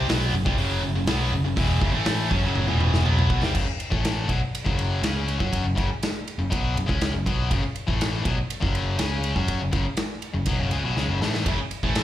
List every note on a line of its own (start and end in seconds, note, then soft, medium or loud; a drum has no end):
0.08 0.32 B1 medium
0.08 0.33 B2 loud
0.08 0.33 F#3 loud
0.08 0.34 B3 loud
0.08 snare loud
0.08 open hi-hat medium
0.32 0.45 F#1 medium
0.32 0.46 F#2 medium
0.32 0.45 C#3 medium
0.45 0.57 C2 loud
0.45 0.57 C3 loud
0.45 0.57 G3 loud
0.45 kick loud
0.57 0.80 F#1 loud
0.57 0.82 F#2 medium
0.57 0.82 C#3 loud
0.57 0.82 F#3 loud
0.57 open hi-hat medium
0.81 0.93 F#1 medium
0.81 0.94 F#2 medium
0.81 0.95 C#3 medium
0.94 1.05 F#1 medium
0.94 1.08 F#2 medium
0.94 1.08 C#3 medium
1.06 1.30 B1 loud
1.06 1.32 B2 medium
1.06 1.32 F#3 loud
1.06 1.32 B3 loud
1.06 snare loud
1.06 open hi-hat medium
1.31 1.42 F#1 medium
1.31 1.44 F#2 medium
1.31 1.44 C#3 medium
1.43 1.56 F#1 medium
1.43 1.57 F#2 medium
1.43 1.57 C#3 medium
1.57 1.80 E1 loud
1.57 1.81 E2 loud
1.57 1.82 B2 loud
1.57 1.82 E3 loud
1.57 kick loud
1.57 open hi-hat medium
1.81 1.92 F#1 loud
1.81 1.94 F#2 loud
1.81 1.94 C#3 loud
1.81 kick loud
1.93 2.28 A1 loud
1.93 2.29 A2 medium
1.93 2.31 E3 medium
1.93 2.31 A3 loud
2.06 snare loud
2.06 open hi-hat medium
2.30 2.42 F#2 loud
2.30 2.42 F#3 medium
2.30 2.43 C#4 loud
2.30 kick loud
2.43 2.66 F#1 loud
2.43 2.67 F#2 medium
2.43 2.67 C#3 loud
2.43 2.68 F#3 loud
2.55 high tom medium
2.67 3.03 E1 loud
2.67 3.04 E2 loud
2.67 3.04 B2 medium
2.67 3.05 E3 loud
2.67 high tom medium
2.80 mid tom medium
2.94 snare medium
3.05 3.40 B1 loud
3.05 3.41 B2 medium
3.05 3.41 F#3 loud
3.05 3.42 B3 loud
3.05 mid tom medium
3.19 mid tom medium
3.30 kick loud
3.41 3.54 C2 medium
3.41 3.54 C3 medium
3.41 3.54 G3 medium
3.41 snare medium
3.53 3.66 F#1 medium
3.53 3.65 F#2 medium
3.53 3.66 C#3 loud
3.53 kick loud
3.53 crash loud
3.66 muted overdriven electric guitar stroke medium
3.66 muted picked electric bass stroke soft
3.80 ride medium
3.90 4.26 A1 medium
3.90 4.27 A2 medium
3.90 4.28 E3 medium
3.90 4.28 A3 loud
3.90 kick loud
4.05 snare loud
4.05 ride medium
4.28 4.39 B1 medium
4.28 4.40 B2 medium
4.28 4.40 F#3 medium
4.28 kick medium
4.28 ride medium
4.40 muted picked electric bass stroke soft
4.40 muted overdriven electric guitar stroke medium
4.55 ride loud
4.65 5.01 F#1 medium
4.65 5.02 F#2 medium
4.65 5.01 C#3 medium
4.65 5.02 F#3 medium
4.65 kick loud
4.79 ride medium
5.02 5.37 C#2 medium
5.02 5.39 C#3 medium
5.02 5.39 G#3 medium
5.02 5.38 C#4 medium
5.02 snare loud
5.02 ride medium
5.28 ride medium
5.39 5.62 F#2 medium
5.39 5.63 F#3 medium
5.39 5.64 C#4 medium
5.39 5.64 F#4 medium
5.39 kick loud
5.53 kick medium
5.53 ride medium
5.63 5.75 F#1 medium
5.63 5.74 F#2 medium
5.63 5.75 C#3 medium
5.75 5.89 F#1 medium
5.75 5.88 F#2 medium
5.75 5.88 C#3 loud
5.75 kick loud
5.75 ride medium
6.03 snare loud
6.03 ride medium
6.28 ride medium
6.38 6.50 F#1 medium
6.38 6.52 F#2 medium
6.38 6.50 C#3 medium
6.50 6.75 B1 loud
6.50 6.74 B2 medium
6.50 6.75 F#3 loud
6.50 6.75 B3 loud
6.50 kick loud
6.50 ride medium
6.75 6.88 F#1 medium
6.75 6.88 F#2 medium
6.75 6.85 C#3 medium
6.75 ride medium
6.86 7.12 C#2 loud
6.86 7.12 C#3 medium
6.86 7.12 G#3 loud
6.86 7.13 C#4 loud
6.86 kick loud
7.01 snare loud
7.01 ride medium
7.13 7.25 F#1 medium
7.13 7.26 F#2 medium
7.13 7.25 C#3 medium
7.26 7.49 B1 loud
7.26 7.50 B2 medium
7.26 7.50 F#3 medium
7.26 7.51 B3 loud
7.26 kick loud
7.26 ride medium
7.50 7.62 F#1 loud
7.50 7.62 F#2 medium
7.50 7.63 C#3 loud
7.50 kick loud
7.50 ride medium
7.63 muted overdriven electric guitar stroke medium
7.63 muted picked electric bass stroke soft
7.76 ride medium
7.87 8.22 A1 medium
7.87 8.24 A2 medium
7.87 8.24 E3 medium
7.87 8.24 A3 loud
7.87 kick loud
8.01 snare loud
8.01 ride medium
8.25 8.37 B1 medium
8.25 8.37 B2 medium
8.25 8.37 F#3 loud
8.25 kick loud
8.25 ride medium
8.36 muted overdriven electric guitar stroke medium
8.36 muted picked electric bass stroke soft
8.50 ride medium
8.60 8.97 F#1 medium
8.60 8.98 F#2 medium
8.60 8.97 C#3 medium
8.60 8.98 F#3 loud
8.60 kick loud
8.75 ride medium
8.98 9.34 C#2 medium
8.98 9.35 C#3 medium
8.98 9.35 G#3 medium
8.98 9.35 C#4 medium
8.98 snare loud
8.98 ride loud
9.24 ride medium
9.35 9.59 F#2 medium
9.35 9.60 F#3 medium
9.35 9.60 C#4 medium
9.35 9.60 F#4 medium
9.35 kick loud
9.48 kick medium
9.48 ride medium
9.60 9.72 F#1 medium
9.60 9.70 F#2 medium
9.60 9.71 C#3 medium
9.72 9.84 F#1 medium
9.72 9.84 F#2 medium
9.72 9.85 C#3 medium
9.72 kick loud
9.72 ride medium
9.97 snare loud
9.97 ride medium
10.22 ride medium
10.34 10.46 F#1 medium
10.34 10.47 F#2 medium
10.34 10.46 C#3 medium
10.46 10.59 B1 medium
10.46 10.59 B2 medium
10.46 10.59 F#3 medium
10.46 kick loud
10.46 ride medium
10.59 10.71 F#1 medium
10.59 10.71 F#2 medium
10.59 10.71 C#3 medium
10.71 10.83 C#2 medium
10.71 10.84 C#3 medium
10.71 10.84 G#3 medium
10.71 ride medium
10.84 10.95 B1 medium
10.84 10.96 B2 medium
10.84 10.96 F#3 medium
10.96 11.07 C#2 medium
10.96 11.08 C#3 medium
10.96 11.09 G#3 medium
10.96 snare medium
11.08 11.20 F#1 medium
11.08 11.21 F#2 medium
11.08 11.21 C#3 medium
11.20 11.44 A1 medium
11.20 11.45 A2 medium
11.20 11.46 E3 loud
11.20 11.46 A3 loud
11.20 snare medium
11.34 snare medium
11.45 11.57 F#1 medium
11.45 11.58 F#2 medium
11.45 11.58 C#3 loud
11.45 kick loud
11.45 ride medium
11.57 muted picked electric bass stroke soft
11.57 muted distorted electric guitar stroke medium
11.57 muted overdriven electric guitar stroke medium
11.71 ride medium
11.83 12.03 A1 medium
11.83 12.03 A2 medium
11.83 12.03 E3 medium
11.83 12.03 A3 loud
11.83 kick medium
11.95 snare loud
11.95 ride medium